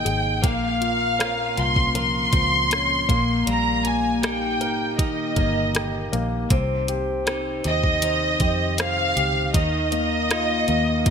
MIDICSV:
0, 0, Header, 1, 6, 480
1, 0, Start_track
1, 0, Tempo, 759494
1, 273, Time_signature, 4, 2, 24, 8
1, 7016, End_track
2, 0, Start_track
2, 0, Title_t, "Violin section"
2, 0, Program_c, 0, 48
2, 0, Note_on_c, 0, 79, 89
2, 280, Note_off_c, 0, 79, 0
2, 284, Note_on_c, 0, 77, 89
2, 998, Note_off_c, 0, 77, 0
2, 1002, Note_on_c, 0, 84, 95
2, 1237, Note_off_c, 0, 84, 0
2, 1248, Note_on_c, 0, 84, 103
2, 2175, Note_off_c, 0, 84, 0
2, 2207, Note_on_c, 0, 82, 92
2, 2440, Note_off_c, 0, 82, 0
2, 2443, Note_on_c, 0, 80, 82
2, 2678, Note_off_c, 0, 80, 0
2, 2679, Note_on_c, 0, 79, 84
2, 3131, Note_off_c, 0, 79, 0
2, 3159, Note_on_c, 0, 75, 82
2, 3876, Note_off_c, 0, 75, 0
2, 4841, Note_on_c, 0, 75, 98
2, 5532, Note_off_c, 0, 75, 0
2, 5558, Note_on_c, 0, 77, 106
2, 6011, Note_off_c, 0, 77, 0
2, 6035, Note_on_c, 0, 75, 97
2, 7016, Note_off_c, 0, 75, 0
2, 7016, End_track
3, 0, Start_track
3, 0, Title_t, "Grand piano"
3, 0, Program_c, 1, 0
3, 0, Control_c, 1, 64, 127
3, 0, Note_on_c, 1, 60, 61
3, 0, Note_on_c, 1, 68, 43
3, 0, Note_on_c, 1, 72, 49
3, 0, Note_on_c, 1, 75, 48
3, 32, Note_off_c, 1, 68, 0
3, 32, Note_on_c, 1, 68, 47
3, 247, Note_off_c, 1, 60, 0
3, 248, Note_off_c, 1, 72, 0
3, 259, Note_off_c, 1, 75, 0
3, 265, Note_off_c, 1, 68, 0
3, 267, Note_on_c, 1, 58, 59
3, 281, Control_c, 1, 64, 0
3, 382, Control_c, 1, 64, 127
3, 511, Note_on_c, 1, 65, 47
3, 754, Note_on_c, 1, 70, 53
3, 983, Note_off_c, 1, 65, 0
3, 992, Note_on_c, 1, 65, 50
3, 1223, Note_off_c, 1, 70, 0
3, 1232, Note_on_c, 1, 70, 49
3, 1463, Note_off_c, 1, 65, 0
3, 1473, Note_on_c, 1, 65, 44
3, 1714, Note_on_c, 1, 61, 50
3, 1925, Note_off_c, 1, 58, 0
3, 1931, Note_off_c, 1, 70, 0
3, 1938, Note_off_c, 1, 65, 0
3, 1947, Note_off_c, 1, 61, 0
3, 1950, Note_on_c, 1, 58, 64
3, 1962, Control_c, 1, 64, 0
3, 2079, Control_c, 1, 64, 127
3, 2190, Note_on_c, 1, 55, 52
3, 2422, Note_off_c, 1, 58, 0
3, 2431, Note_on_c, 1, 58, 51
3, 2671, Note_on_c, 1, 67, 49
3, 2913, Note_on_c, 1, 70, 54
3, 3127, Note_off_c, 1, 55, 0
3, 3140, Note_off_c, 1, 67, 0
3, 3149, Note_on_c, 1, 67, 49
3, 3367, Note_off_c, 1, 58, 0
3, 3382, Note_off_c, 1, 70, 0
3, 3392, Note_on_c, 1, 70, 51
3, 3622, Note_off_c, 1, 67, 0
3, 3632, Note_on_c, 1, 67, 49
3, 3871, Note_on_c, 1, 58, 66
3, 4091, Note_off_c, 1, 70, 0
3, 4098, Note_off_c, 1, 67, 0
3, 4105, Note_off_c, 1, 58, 0
3, 4114, Note_on_c, 1, 60, 65
3, 4122, Control_c, 1, 64, 0
3, 4245, Control_c, 1, 64, 127
3, 4352, Note_on_c, 1, 67, 50
3, 4583, Note_off_c, 1, 60, 0
3, 4592, Note_on_c, 1, 60, 55
3, 4821, Note_off_c, 1, 67, 0
3, 4830, Note_on_c, 1, 67, 49
3, 5074, Note_on_c, 1, 72, 53
3, 5305, Note_off_c, 1, 67, 0
3, 5315, Note_on_c, 1, 67, 47
3, 5527, Note_off_c, 1, 60, 0
3, 5542, Note_off_c, 1, 72, 0
3, 5551, Note_on_c, 1, 72, 54
3, 5783, Note_off_c, 1, 67, 0
3, 5792, Note_on_c, 1, 67, 49
3, 6018, Note_off_c, 1, 72, 0
3, 6025, Note_off_c, 1, 67, 0
3, 6027, Note_on_c, 1, 51, 62
3, 6042, Control_c, 1, 64, 0
3, 6142, Control_c, 1, 64, 127
3, 6267, Note_on_c, 1, 58, 53
3, 6509, Note_on_c, 1, 65, 55
3, 6741, Note_off_c, 1, 58, 0
3, 6751, Note_on_c, 1, 58, 52
3, 6981, Note_off_c, 1, 65, 0
3, 6991, Note_on_c, 1, 65, 53
3, 7016, Note_off_c, 1, 51, 0
3, 7016, Note_off_c, 1, 58, 0
3, 7016, Note_off_c, 1, 65, 0
3, 7016, End_track
4, 0, Start_track
4, 0, Title_t, "Clean electric guitar"
4, 0, Program_c, 2, 27
4, 0, Note_on_c, 2, 48, 75
4, 0, Note_on_c, 2, 51, 61
4, 0, Note_on_c, 2, 58, 51
4, 0, Note_on_c, 2, 60, 49
4, 0, Note_on_c, 2, 68, 55
4, 270, Note_off_c, 2, 48, 0
4, 273, Note_on_c, 2, 46, 73
4, 321, Note_off_c, 2, 51, 0
4, 325, Note_off_c, 2, 68, 0
4, 752, Note_off_c, 2, 58, 0
4, 754, Note_off_c, 2, 60, 0
4, 754, Note_on_c, 2, 60, 51
4, 757, Note_on_c, 2, 61, 54
4, 760, Note_on_c, 2, 65, 57
4, 1234, Note_on_c, 2, 53, 64
4, 1464, Note_off_c, 2, 60, 0
4, 1471, Note_on_c, 2, 60, 56
4, 1944, Note_off_c, 2, 46, 0
4, 1951, Note_on_c, 2, 46, 71
4, 2000, Note_off_c, 2, 60, 0
4, 2001, Note_off_c, 2, 53, 0
4, 2003, Note_off_c, 2, 61, 0
4, 2005, Note_off_c, 2, 65, 0
4, 2185, Note_off_c, 2, 46, 0
4, 2192, Note_on_c, 2, 46, 74
4, 2673, Note_on_c, 2, 58, 52
4, 2677, Note_on_c, 2, 63, 56
4, 2680, Note_on_c, 2, 67, 58
4, 3151, Note_on_c, 2, 51, 67
4, 3380, Note_off_c, 2, 58, 0
4, 3388, Note_on_c, 2, 58, 56
4, 4108, Note_off_c, 2, 46, 0
4, 4110, Note_on_c, 2, 48, 77
4, 4158, Note_off_c, 2, 58, 0
4, 4591, Note_on_c, 2, 60, 54
4, 4592, Note_off_c, 2, 63, 0
4, 4594, Note_on_c, 2, 63, 53
4, 4597, Note_off_c, 2, 67, 0
4, 4600, Note_on_c, 2, 67, 53
4, 5067, Note_off_c, 2, 51, 0
4, 5069, Note_on_c, 2, 51, 66
4, 5302, Note_off_c, 2, 60, 0
4, 5310, Note_on_c, 2, 60, 54
4, 6027, Note_off_c, 2, 51, 0
4, 6029, Note_on_c, 2, 51, 79
4, 6032, Note_off_c, 2, 48, 0
4, 6079, Note_off_c, 2, 60, 0
4, 6083, Note_off_c, 2, 67, 0
4, 6513, Note_on_c, 2, 58, 57
4, 6516, Note_off_c, 2, 63, 0
4, 6518, Note_on_c, 2, 63, 50
4, 6521, Note_on_c, 2, 65, 62
4, 6983, Note_off_c, 2, 58, 0
4, 6991, Note_on_c, 2, 58, 67
4, 7016, Note_off_c, 2, 51, 0
4, 7016, Note_off_c, 2, 58, 0
4, 7016, Note_off_c, 2, 63, 0
4, 7016, Note_off_c, 2, 65, 0
4, 7016, End_track
5, 0, Start_track
5, 0, Title_t, "Fingered electric bass"
5, 0, Program_c, 3, 33
5, 36, Note_on_c, 3, 32, 75
5, 277, Note_off_c, 3, 32, 0
5, 277, Note_on_c, 3, 34, 87
5, 970, Note_off_c, 3, 34, 0
5, 998, Note_on_c, 3, 36, 77
5, 1450, Note_off_c, 3, 36, 0
5, 1472, Note_on_c, 3, 37, 74
5, 1928, Note_off_c, 3, 37, 0
5, 1954, Note_on_c, 3, 34, 81
5, 2177, Note_off_c, 3, 34, 0
5, 2192, Note_on_c, 3, 34, 85
5, 2911, Note_off_c, 3, 34, 0
5, 2911, Note_on_c, 3, 31, 74
5, 3367, Note_off_c, 3, 31, 0
5, 3392, Note_on_c, 3, 31, 81
5, 3847, Note_off_c, 3, 31, 0
5, 3873, Note_on_c, 3, 34, 80
5, 4096, Note_off_c, 3, 34, 0
5, 4111, Note_on_c, 3, 36, 94
5, 4807, Note_off_c, 3, 36, 0
5, 4835, Note_on_c, 3, 39, 79
5, 5289, Note_off_c, 3, 39, 0
5, 5312, Note_on_c, 3, 41, 77
5, 5767, Note_off_c, 3, 41, 0
5, 5793, Note_on_c, 3, 37, 73
5, 6016, Note_off_c, 3, 37, 0
5, 6034, Note_on_c, 3, 39, 91
5, 6728, Note_off_c, 3, 39, 0
5, 6752, Note_on_c, 3, 39, 85
5, 7016, Note_off_c, 3, 39, 0
5, 7016, End_track
6, 0, Start_track
6, 0, Title_t, "Drums"
6, 38, Note_on_c, 9, 42, 72
6, 102, Note_off_c, 9, 42, 0
6, 275, Note_on_c, 9, 36, 96
6, 276, Note_on_c, 9, 42, 82
6, 338, Note_off_c, 9, 36, 0
6, 339, Note_off_c, 9, 42, 0
6, 517, Note_on_c, 9, 42, 58
6, 580, Note_off_c, 9, 42, 0
6, 760, Note_on_c, 9, 42, 69
6, 764, Note_on_c, 9, 37, 95
6, 824, Note_off_c, 9, 42, 0
6, 828, Note_off_c, 9, 37, 0
6, 995, Note_on_c, 9, 42, 54
6, 1058, Note_off_c, 9, 42, 0
6, 1114, Note_on_c, 9, 36, 76
6, 1177, Note_off_c, 9, 36, 0
6, 1233, Note_on_c, 9, 42, 81
6, 1296, Note_off_c, 9, 42, 0
6, 1470, Note_on_c, 9, 42, 68
6, 1472, Note_on_c, 9, 36, 78
6, 1533, Note_off_c, 9, 42, 0
6, 1535, Note_off_c, 9, 36, 0
6, 1714, Note_on_c, 9, 42, 81
6, 1724, Note_on_c, 9, 37, 93
6, 1777, Note_off_c, 9, 42, 0
6, 1787, Note_off_c, 9, 37, 0
6, 1953, Note_on_c, 9, 36, 96
6, 1956, Note_on_c, 9, 42, 71
6, 2016, Note_off_c, 9, 36, 0
6, 2019, Note_off_c, 9, 42, 0
6, 2195, Note_on_c, 9, 42, 86
6, 2258, Note_off_c, 9, 42, 0
6, 2432, Note_on_c, 9, 42, 66
6, 2495, Note_off_c, 9, 42, 0
6, 2676, Note_on_c, 9, 42, 71
6, 2680, Note_on_c, 9, 37, 93
6, 2739, Note_off_c, 9, 42, 0
6, 2743, Note_off_c, 9, 37, 0
6, 2913, Note_on_c, 9, 42, 54
6, 2977, Note_off_c, 9, 42, 0
6, 3153, Note_on_c, 9, 36, 91
6, 3155, Note_on_c, 9, 42, 86
6, 3216, Note_off_c, 9, 36, 0
6, 3218, Note_off_c, 9, 42, 0
6, 3390, Note_on_c, 9, 42, 67
6, 3391, Note_on_c, 9, 36, 82
6, 3453, Note_off_c, 9, 42, 0
6, 3455, Note_off_c, 9, 36, 0
6, 3632, Note_on_c, 9, 42, 85
6, 3642, Note_on_c, 9, 37, 94
6, 3695, Note_off_c, 9, 42, 0
6, 3705, Note_off_c, 9, 37, 0
6, 3875, Note_on_c, 9, 42, 67
6, 3939, Note_off_c, 9, 42, 0
6, 4111, Note_on_c, 9, 42, 88
6, 4112, Note_on_c, 9, 36, 95
6, 4174, Note_off_c, 9, 42, 0
6, 4175, Note_off_c, 9, 36, 0
6, 4350, Note_on_c, 9, 42, 66
6, 4414, Note_off_c, 9, 42, 0
6, 4594, Note_on_c, 9, 42, 69
6, 4598, Note_on_c, 9, 37, 101
6, 4657, Note_off_c, 9, 42, 0
6, 4661, Note_off_c, 9, 37, 0
6, 4831, Note_on_c, 9, 42, 56
6, 4894, Note_off_c, 9, 42, 0
6, 4952, Note_on_c, 9, 36, 83
6, 5015, Note_off_c, 9, 36, 0
6, 5070, Note_on_c, 9, 42, 87
6, 5133, Note_off_c, 9, 42, 0
6, 5308, Note_on_c, 9, 42, 68
6, 5311, Note_on_c, 9, 36, 80
6, 5371, Note_off_c, 9, 42, 0
6, 5374, Note_off_c, 9, 36, 0
6, 5550, Note_on_c, 9, 42, 87
6, 5560, Note_on_c, 9, 37, 92
6, 5614, Note_off_c, 9, 42, 0
6, 5624, Note_off_c, 9, 37, 0
6, 5795, Note_on_c, 9, 42, 71
6, 5858, Note_off_c, 9, 42, 0
6, 6031, Note_on_c, 9, 42, 85
6, 6032, Note_on_c, 9, 36, 100
6, 6095, Note_off_c, 9, 36, 0
6, 6095, Note_off_c, 9, 42, 0
6, 6270, Note_on_c, 9, 42, 64
6, 6333, Note_off_c, 9, 42, 0
6, 6513, Note_on_c, 9, 42, 74
6, 6517, Note_on_c, 9, 37, 98
6, 6577, Note_off_c, 9, 42, 0
6, 6581, Note_off_c, 9, 37, 0
6, 6749, Note_on_c, 9, 42, 59
6, 6812, Note_off_c, 9, 42, 0
6, 6990, Note_on_c, 9, 42, 80
6, 6991, Note_on_c, 9, 36, 92
6, 7016, Note_off_c, 9, 36, 0
6, 7016, Note_off_c, 9, 42, 0
6, 7016, End_track
0, 0, End_of_file